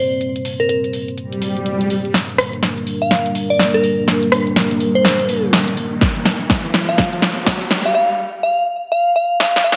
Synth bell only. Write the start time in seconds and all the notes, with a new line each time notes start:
Already playing: C5
0.60 A#4
0.69 A#4
3.02 F5
3.50 D5
3.74 A#4
4.95 C5
6.89 F5
7.86 F5
7.95 F5
8.43 F5
8.92 F5
9.16 F5
9.40 F5
9.64 F5